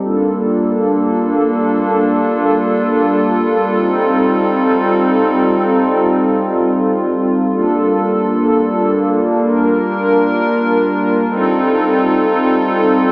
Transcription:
0, 0, Header, 1, 2, 480
1, 0, Start_track
1, 0, Key_signature, -2, "minor"
1, 0, Tempo, 500000
1, 12594, End_track
2, 0, Start_track
2, 0, Title_t, "Analog synth pad"
2, 0, Program_c, 0, 89
2, 35, Note_on_c, 0, 55, 77
2, 35, Note_on_c, 0, 58, 68
2, 35, Note_on_c, 0, 62, 70
2, 35, Note_on_c, 0, 65, 69
2, 35, Note_on_c, 0, 69, 83
2, 3599, Note_off_c, 0, 58, 0
2, 3600, Note_off_c, 0, 62, 0
2, 3637, Note_on_c, 0, 60, 69
2, 3637, Note_on_c, 0, 63, 67
2, 7197, Note_off_c, 0, 69, 0
2, 7200, Note_off_c, 0, 63, 0
2, 7201, Note_off_c, 0, 60, 0
2, 7235, Note_on_c, 0, 58, 69
2, 7235, Note_on_c, 0, 62, 68
2, 7235, Note_on_c, 0, 69, 85
2, 9017, Note_off_c, 0, 69, 0
2, 9037, Note_on_c, 0, 70, 86
2, 10797, Note_off_c, 0, 55, 0
2, 10797, Note_off_c, 0, 65, 0
2, 10800, Note_off_c, 0, 58, 0
2, 10800, Note_off_c, 0, 62, 0
2, 10819, Note_off_c, 0, 70, 0
2, 10836, Note_on_c, 0, 55, 76
2, 10837, Note_on_c, 0, 60, 70
2, 10837, Note_on_c, 0, 65, 68
2, 10837, Note_on_c, 0, 69, 81
2, 10838, Note_on_c, 0, 63, 70
2, 12594, Note_off_c, 0, 55, 0
2, 12594, Note_off_c, 0, 60, 0
2, 12594, Note_off_c, 0, 63, 0
2, 12594, Note_off_c, 0, 65, 0
2, 12594, Note_off_c, 0, 69, 0
2, 12594, End_track
0, 0, End_of_file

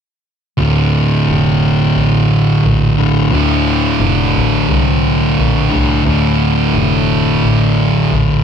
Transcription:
0, 0, Header, 1, 3, 480
1, 0, Start_track
1, 0, Key_signature, -1, "minor"
1, 0, Tempo, 684151
1, 411, Time_signature, 4, 2, 24, 8
1, 5919, End_track
2, 0, Start_track
2, 0, Title_t, "Distorted electric guitar"
2, 0, Program_c, 0, 30
2, 404, Note_on_c, 0, 38, 93
2, 412, Note_on_c, 0, 45, 94
2, 418, Note_on_c, 0, 50, 101
2, 2078, Note_off_c, 0, 45, 0
2, 2081, Note_off_c, 0, 50, 0
2, 2084, Note_on_c, 0, 50, 85
2, 2092, Note_on_c, 0, 45, 75
2, 2097, Note_off_c, 0, 38, 0
2, 2100, Note_on_c, 0, 38, 73
2, 2318, Note_off_c, 0, 45, 0
2, 2324, Note_off_c, 0, 38, 0
2, 2326, Note_on_c, 0, 38, 86
2, 2336, Note_on_c, 0, 45, 100
2, 2342, Note_off_c, 0, 50, 0
2, 2345, Note_on_c, 0, 50, 94
2, 3992, Note_off_c, 0, 50, 0
2, 3993, Note_off_c, 0, 45, 0
2, 3995, Note_on_c, 0, 50, 82
2, 4001, Note_on_c, 0, 45, 79
2, 4009, Note_off_c, 0, 38, 0
2, 4012, Note_on_c, 0, 38, 67
2, 4231, Note_off_c, 0, 38, 0
2, 4233, Note_off_c, 0, 45, 0
2, 4234, Note_on_c, 0, 38, 87
2, 4241, Note_on_c, 0, 45, 94
2, 4250, Note_off_c, 0, 50, 0
2, 4253, Note_on_c, 0, 50, 105
2, 5913, Note_off_c, 0, 45, 0
2, 5919, Note_off_c, 0, 38, 0
2, 5919, Note_off_c, 0, 50, 0
2, 5919, End_track
3, 0, Start_track
3, 0, Title_t, "Double bass"
3, 0, Program_c, 1, 43
3, 412, Note_on_c, 1, 38, 84
3, 831, Note_off_c, 1, 38, 0
3, 893, Note_on_c, 1, 29, 82
3, 1312, Note_off_c, 1, 29, 0
3, 1366, Note_on_c, 1, 33, 84
3, 1788, Note_off_c, 1, 33, 0
3, 1851, Note_on_c, 1, 34, 85
3, 2271, Note_off_c, 1, 34, 0
3, 2326, Note_on_c, 1, 38, 85
3, 2748, Note_off_c, 1, 38, 0
3, 2804, Note_on_c, 1, 29, 84
3, 3018, Note_off_c, 1, 29, 0
3, 3050, Note_on_c, 1, 33, 94
3, 3261, Note_off_c, 1, 33, 0
3, 3290, Note_on_c, 1, 36, 88
3, 3710, Note_off_c, 1, 36, 0
3, 3775, Note_on_c, 1, 34, 93
3, 3984, Note_off_c, 1, 34, 0
3, 4010, Note_on_c, 1, 36, 85
3, 4221, Note_off_c, 1, 36, 0
3, 4248, Note_on_c, 1, 38, 93
3, 4669, Note_off_c, 1, 38, 0
3, 4728, Note_on_c, 1, 29, 85
3, 5149, Note_off_c, 1, 29, 0
3, 5211, Note_on_c, 1, 33, 84
3, 5631, Note_off_c, 1, 33, 0
3, 5691, Note_on_c, 1, 34, 89
3, 5919, Note_off_c, 1, 34, 0
3, 5919, End_track
0, 0, End_of_file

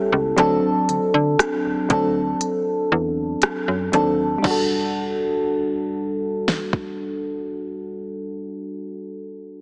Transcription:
0, 0, Header, 1, 4, 480
1, 0, Start_track
1, 0, Key_signature, 1, "minor"
1, 0, Tempo, 1016949
1, 177, Time_signature, 4, 2, 24, 8
1, 4538, End_track
2, 0, Start_track
2, 0, Title_t, "FM electric piano"
2, 0, Program_c, 0, 5
2, 0, Control_c, 0, 64, 127
2, 0, Note_on_c, 0, 55, 87
2, 0, Note_on_c, 0, 59, 53
2, 0, Note_on_c, 0, 61, 79
2, 0, Note_on_c, 0, 64, 76
2, 0, Note_on_c, 0, 67, 64
2, 0, Note_on_c, 0, 69, 93
2, 79, Note_off_c, 0, 55, 0
2, 82, Note_off_c, 0, 61, 0
2, 84, Note_off_c, 0, 64, 0
2, 86, Note_off_c, 0, 69, 0
2, 172, Note_on_c, 0, 54, 103
2, 176, Note_on_c, 0, 60, 87
2, 181, Note_on_c, 0, 62, 86
2, 183, Control_c, 0, 64, 0
2, 184, Note_off_c, 0, 67, 0
2, 185, Note_off_c, 0, 59, 0
2, 186, Note_on_c, 0, 69, 111
2, 266, Control_c, 0, 64, 127
2, 705, Note_off_c, 0, 54, 0
2, 707, Note_off_c, 0, 60, 0
2, 710, Note_off_c, 0, 62, 0
2, 712, Note_off_c, 0, 69, 0
2, 892, Note_on_c, 0, 54, 77
2, 896, Note_on_c, 0, 60, 70
2, 901, Note_on_c, 0, 62, 70
2, 906, Note_on_c, 0, 69, 91
2, 1602, Note_off_c, 0, 54, 0
2, 1604, Note_off_c, 0, 60, 0
2, 1607, Note_off_c, 0, 62, 0
2, 1609, Note_off_c, 0, 69, 0
2, 1851, Note_on_c, 0, 54, 76
2, 1855, Note_on_c, 0, 60, 72
2, 1859, Note_on_c, 0, 62, 73
2, 1865, Note_on_c, 0, 69, 91
2, 2031, Note_off_c, 0, 54, 0
2, 2033, Note_off_c, 0, 60, 0
2, 2035, Note_off_c, 0, 62, 0
2, 2038, Note_off_c, 0, 69, 0
2, 2069, Note_on_c, 0, 55, 73
2, 2089, Note_on_c, 0, 62, 70
2, 2103, Control_c, 0, 64, 0
2, 2107, Note_on_c, 0, 66, 67
2, 2126, Note_on_c, 0, 69, 81
2, 2195, Control_c, 0, 64, 127
2, 3986, Note_off_c, 0, 55, 0
2, 4005, Note_off_c, 0, 62, 0
2, 4024, Note_off_c, 0, 66, 0
2, 4043, Note_off_c, 0, 69, 0
2, 4538, End_track
3, 0, Start_track
3, 0, Title_t, "FM bass"
3, 0, Program_c, 1, 39
3, 59, Note_on_c, 1, 37, 93
3, 162, Note_off_c, 1, 37, 0
3, 179, Note_on_c, 1, 38, 116
3, 282, Note_off_c, 1, 38, 0
3, 419, Note_on_c, 1, 50, 44
3, 467, Note_off_c, 1, 50, 0
3, 539, Note_on_c, 1, 50, 90
3, 642, Note_off_c, 1, 50, 0
3, 780, Note_on_c, 1, 38, 48
3, 827, Note_off_c, 1, 38, 0
3, 899, Note_on_c, 1, 38, 92
3, 1106, Note_off_c, 1, 38, 0
3, 1378, Note_on_c, 1, 40, 93
3, 1586, Note_off_c, 1, 40, 0
3, 1737, Note_on_c, 1, 42, 78
3, 1841, Note_off_c, 1, 42, 0
3, 1857, Note_on_c, 1, 39, 90
3, 2065, Note_off_c, 1, 39, 0
3, 2098, Note_on_c, 1, 28, 97
3, 4014, Note_off_c, 1, 28, 0
3, 4538, End_track
4, 0, Start_track
4, 0, Title_t, "Drums"
4, 178, Note_on_c, 9, 42, 61
4, 225, Note_off_c, 9, 42, 0
4, 420, Note_on_c, 9, 42, 60
4, 467, Note_off_c, 9, 42, 0
4, 658, Note_on_c, 9, 37, 108
4, 662, Note_on_c, 9, 42, 68
4, 705, Note_off_c, 9, 37, 0
4, 709, Note_off_c, 9, 42, 0
4, 897, Note_on_c, 9, 42, 61
4, 898, Note_on_c, 9, 36, 82
4, 944, Note_off_c, 9, 42, 0
4, 945, Note_off_c, 9, 36, 0
4, 1137, Note_on_c, 9, 42, 63
4, 1184, Note_off_c, 9, 42, 0
4, 1613, Note_on_c, 9, 42, 62
4, 1620, Note_on_c, 9, 37, 107
4, 1660, Note_off_c, 9, 42, 0
4, 1667, Note_off_c, 9, 37, 0
4, 1856, Note_on_c, 9, 42, 59
4, 1903, Note_off_c, 9, 42, 0
4, 2096, Note_on_c, 9, 49, 78
4, 2097, Note_on_c, 9, 36, 97
4, 2143, Note_off_c, 9, 49, 0
4, 2144, Note_off_c, 9, 36, 0
4, 3058, Note_on_c, 9, 38, 52
4, 3105, Note_off_c, 9, 38, 0
4, 3177, Note_on_c, 9, 36, 66
4, 3224, Note_off_c, 9, 36, 0
4, 4538, End_track
0, 0, End_of_file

